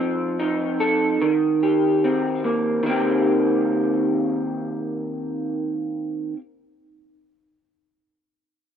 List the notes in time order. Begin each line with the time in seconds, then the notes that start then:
Already playing: F3 C4 D#4
0.39 D#4
0.80 A4
1.22 D#3
1.63 G4
2.04 C4
2.44 A#3
2.83 D#3 A#3
2.88 C4 G4